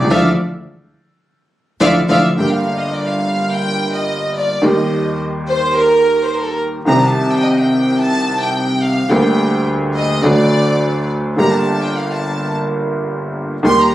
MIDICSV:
0, 0, Header, 1, 5, 480
1, 0, Start_track
1, 0, Key_signature, -2, "minor"
1, 0, Tempo, 566572
1, 93, Time_signature, 4, 2, 24, 8
1, 2974, Tempo, 560224
1, 8254, Tempo, 567644
1, 11869, End_track
2, 0, Start_track
2, 0, Title_t, "Violin section"
2, 0, Program_c, 0, 48
2, 86, Note_on_c, 0, 77, 78
2, 89, Note_on_c, 0, 76, 75
2, 90, Note_on_c, 0, 74, 79
2, 241, Note_off_c, 0, 77, 0
2, 243, Note_off_c, 0, 74, 0
2, 243, Note_off_c, 0, 76, 0
2, 1528, Note_on_c, 0, 76, 80
2, 1529, Note_on_c, 0, 77, 83
2, 1530, Note_on_c, 0, 74, 91
2, 1686, Note_off_c, 0, 76, 0
2, 1686, Note_off_c, 0, 77, 0
2, 1687, Note_off_c, 0, 74, 0
2, 1776, Note_on_c, 0, 74, 76
2, 1776, Note_on_c, 0, 76, 79
2, 1778, Note_on_c, 0, 77, 78
2, 1930, Note_off_c, 0, 74, 0
2, 1930, Note_off_c, 0, 76, 0
2, 1931, Note_off_c, 0, 77, 0
2, 2015, Note_on_c, 0, 79, 82
2, 2127, Note_off_c, 0, 79, 0
2, 2130, Note_on_c, 0, 77, 74
2, 2373, Note_off_c, 0, 77, 0
2, 2376, Note_on_c, 0, 75, 78
2, 2496, Note_off_c, 0, 75, 0
2, 2503, Note_on_c, 0, 74, 78
2, 2617, Note_on_c, 0, 77, 77
2, 2619, Note_off_c, 0, 74, 0
2, 2975, Note_off_c, 0, 77, 0
2, 2977, Note_on_c, 0, 79, 86
2, 3337, Note_off_c, 0, 79, 0
2, 3345, Note_on_c, 0, 75, 77
2, 3676, Note_off_c, 0, 75, 0
2, 3708, Note_on_c, 0, 74, 73
2, 3944, Note_off_c, 0, 74, 0
2, 3947, Note_on_c, 0, 75, 71
2, 4425, Note_off_c, 0, 75, 0
2, 4654, Note_on_c, 0, 72, 90
2, 4879, Note_off_c, 0, 72, 0
2, 4892, Note_on_c, 0, 70, 101
2, 5304, Note_off_c, 0, 70, 0
2, 5306, Note_on_c, 0, 72, 80
2, 5384, Note_off_c, 0, 72, 0
2, 5392, Note_on_c, 0, 70, 78
2, 5465, Note_off_c, 0, 70, 0
2, 5465, Note_on_c, 0, 69, 71
2, 5539, Note_on_c, 0, 70, 81
2, 5540, Note_off_c, 0, 69, 0
2, 5616, Note_off_c, 0, 70, 0
2, 5860, Note_on_c, 0, 82, 91
2, 5969, Note_off_c, 0, 82, 0
2, 5987, Note_on_c, 0, 81, 78
2, 6221, Note_off_c, 0, 81, 0
2, 6229, Note_on_c, 0, 79, 94
2, 6340, Note_on_c, 0, 75, 80
2, 6342, Note_off_c, 0, 79, 0
2, 6457, Note_off_c, 0, 75, 0
2, 6463, Note_on_c, 0, 79, 81
2, 6818, Note_off_c, 0, 79, 0
2, 6820, Note_on_c, 0, 81, 105
2, 7150, Note_off_c, 0, 81, 0
2, 7176, Note_on_c, 0, 79, 87
2, 7526, Note_on_c, 0, 77, 76
2, 7533, Note_off_c, 0, 79, 0
2, 7764, Note_on_c, 0, 79, 74
2, 7768, Note_off_c, 0, 77, 0
2, 8250, Note_off_c, 0, 79, 0
2, 8492, Note_on_c, 0, 75, 85
2, 8716, Note_off_c, 0, 75, 0
2, 8725, Note_on_c, 0, 74, 103
2, 9456, Note_off_c, 0, 74, 0
2, 9702, Note_on_c, 0, 82, 97
2, 9813, Note_off_c, 0, 82, 0
2, 9820, Note_on_c, 0, 81, 84
2, 10061, Note_off_c, 0, 81, 0
2, 10064, Note_on_c, 0, 79, 88
2, 10184, Note_off_c, 0, 79, 0
2, 10193, Note_on_c, 0, 77, 74
2, 10309, Note_off_c, 0, 77, 0
2, 10310, Note_on_c, 0, 81, 74
2, 10666, Note_off_c, 0, 81, 0
2, 11624, Note_on_c, 0, 84, 98
2, 11729, Note_off_c, 0, 84, 0
2, 11740, Note_on_c, 0, 82, 83
2, 11869, Note_off_c, 0, 82, 0
2, 11869, End_track
3, 0, Start_track
3, 0, Title_t, "Bandoneon"
3, 0, Program_c, 1, 23
3, 93, Note_on_c, 1, 76, 87
3, 93, Note_on_c, 1, 77, 88
3, 94, Note_on_c, 1, 74, 92
3, 245, Note_off_c, 1, 76, 0
3, 245, Note_off_c, 1, 77, 0
3, 246, Note_off_c, 1, 74, 0
3, 1540, Note_on_c, 1, 77, 83
3, 1541, Note_on_c, 1, 74, 83
3, 1541, Note_on_c, 1, 76, 75
3, 1693, Note_off_c, 1, 74, 0
3, 1693, Note_off_c, 1, 76, 0
3, 1693, Note_off_c, 1, 77, 0
3, 1785, Note_on_c, 1, 74, 81
3, 1785, Note_on_c, 1, 77, 81
3, 1788, Note_on_c, 1, 76, 80
3, 1935, Note_off_c, 1, 74, 0
3, 1935, Note_off_c, 1, 77, 0
3, 1937, Note_off_c, 1, 76, 0
3, 11869, End_track
4, 0, Start_track
4, 0, Title_t, "Upright piano"
4, 0, Program_c, 2, 0
4, 37, Note_on_c, 2, 37, 68
4, 95, Note_off_c, 2, 37, 0
4, 96, Note_on_c, 2, 50, 86
4, 96, Note_on_c, 2, 52, 91
4, 96, Note_on_c, 2, 53, 102
4, 247, Note_off_c, 2, 50, 0
4, 247, Note_off_c, 2, 52, 0
4, 247, Note_off_c, 2, 53, 0
4, 1528, Note_on_c, 2, 52, 83
4, 1529, Note_on_c, 2, 53, 72
4, 1530, Note_on_c, 2, 50, 80
4, 1686, Note_off_c, 2, 50, 0
4, 1686, Note_off_c, 2, 52, 0
4, 1686, Note_off_c, 2, 53, 0
4, 1771, Note_on_c, 2, 52, 68
4, 1772, Note_on_c, 2, 50, 74
4, 1773, Note_on_c, 2, 53, 78
4, 1927, Note_off_c, 2, 50, 0
4, 1927, Note_off_c, 2, 52, 0
4, 1928, Note_off_c, 2, 53, 0
4, 2002, Note_on_c, 2, 50, 52
4, 2017, Note_on_c, 2, 55, 47
4, 2021, Note_on_c, 2, 31, 57
4, 2022, Note_on_c, 2, 43, 64
4, 2025, Note_on_c, 2, 58, 49
4, 2039, Note_on_c, 2, 67, 60
4, 3834, Note_off_c, 2, 50, 0
4, 3842, Note_off_c, 2, 55, 0
4, 3844, Note_off_c, 2, 31, 0
4, 3844, Note_off_c, 2, 43, 0
4, 3846, Note_off_c, 2, 58, 0
4, 3852, Note_off_c, 2, 67, 0
4, 3923, Note_on_c, 2, 51, 69
4, 3932, Note_on_c, 2, 55, 58
4, 3939, Note_on_c, 2, 39, 64
4, 3946, Note_on_c, 2, 58, 54
4, 3957, Note_on_c, 2, 67, 66
4, 5756, Note_off_c, 2, 55, 0
4, 5759, Note_off_c, 2, 39, 0
4, 5760, Note_off_c, 2, 51, 0
4, 5763, Note_off_c, 2, 58, 0
4, 5768, Note_off_c, 2, 67, 0
4, 5838, Note_on_c, 2, 51, 54
4, 5849, Note_on_c, 2, 55, 53
4, 5856, Note_on_c, 2, 36, 75
4, 5857, Note_on_c, 2, 48, 70
4, 5861, Note_on_c, 2, 60, 53
4, 5874, Note_on_c, 2, 67, 65
4, 7666, Note_off_c, 2, 51, 0
4, 7672, Note_off_c, 2, 55, 0
4, 7676, Note_off_c, 2, 36, 0
4, 7676, Note_off_c, 2, 48, 0
4, 7678, Note_off_c, 2, 60, 0
4, 7684, Note_off_c, 2, 67, 0
4, 7756, Note_on_c, 2, 50, 67
4, 7767, Note_on_c, 2, 55, 54
4, 7771, Note_on_c, 2, 38, 70
4, 7779, Note_on_c, 2, 58, 54
4, 7790, Note_on_c, 2, 67, 65
4, 8684, Note_off_c, 2, 55, 0
4, 8686, Note_off_c, 2, 38, 0
4, 8687, Note_off_c, 2, 50, 0
4, 8690, Note_off_c, 2, 58, 0
4, 8696, Note_off_c, 2, 67, 0
4, 8714, Note_on_c, 2, 50, 55
4, 8724, Note_on_c, 2, 54, 51
4, 8726, Note_off_c, 2, 50, 0
4, 8730, Note_on_c, 2, 38, 65
4, 8731, Note_on_c, 2, 50, 62
4, 8736, Note_on_c, 2, 57, 42
4, 8748, Note_on_c, 2, 66, 57
4, 9648, Note_off_c, 2, 54, 0
4, 9651, Note_off_c, 2, 38, 0
4, 9651, Note_off_c, 2, 50, 0
4, 9654, Note_off_c, 2, 57, 0
4, 9660, Note_off_c, 2, 66, 0
4, 9684, Note_on_c, 2, 50, 63
4, 9695, Note_on_c, 2, 55, 50
4, 9700, Note_on_c, 2, 31, 70
4, 9702, Note_on_c, 2, 43, 68
4, 9707, Note_on_c, 2, 58, 54
4, 9717, Note_on_c, 2, 67, 62
4, 11511, Note_off_c, 2, 50, 0
4, 11517, Note_off_c, 2, 55, 0
4, 11519, Note_off_c, 2, 31, 0
4, 11520, Note_off_c, 2, 43, 0
4, 11522, Note_off_c, 2, 58, 0
4, 11528, Note_off_c, 2, 67, 0
4, 11600, Note_on_c, 2, 51, 70
4, 11610, Note_on_c, 2, 55, 59
4, 11613, Note_on_c, 2, 39, 69
4, 11621, Note_on_c, 2, 58, 53
4, 11630, Note_on_c, 2, 67, 64
4, 11869, Note_off_c, 2, 39, 0
4, 11869, Note_off_c, 2, 51, 0
4, 11869, Note_off_c, 2, 55, 0
4, 11869, Note_off_c, 2, 58, 0
4, 11869, Note_off_c, 2, 67, 0
4, 11869, End_track
5, 0, Start_track
5, 0, Title_t, "Upright bass"
5, 0, Program_c, 3, 32
5, 35, Note_on_c, 3, 37, 64
5, 90, Note_off_c, 3, 37, 0
5, 95, Note_on_c, 3, 38, 90
5, 271, Note_off_c, 3, 38, 0
5, 1529, Note_on_c, 3, 38, 78
5, 1712, Note_off_c, 3, 38, 0
5, 1776, Note_on_c, 3, 38, 88
5, 1955, Note_off_c, 3, 38, 0
5, 2016, Note_on_c, 3, 31, 56
5, 3841, Note_off_c, 3, 31, 0
5, 3936, Note_on_c, 3, 39, 64
5, 5758, Note_off_c, 3, 39, 0
5, 5855, Note_on_c, 3, 36, 73
5, 7675, Note_off_c, 3, 36, 0
5, 7768, Note_on_c, 3, 38, 67
5, 8685, Note_off_c, 3, 38, 0
5, 8734, Note_on_c, 3, 38, 64
5, 9653, Note_off_c, 3, 38, 0
5, 9701, Note_on_c, 3, 31, 64
5, 11519, Note_off_c, 3, 31, 0
5, 11612, Note_on_c, 3, 39, 73
5, 11869, Note_off_c, 3, 39, 0
5, 11869, End_track
0, 0, End_of_file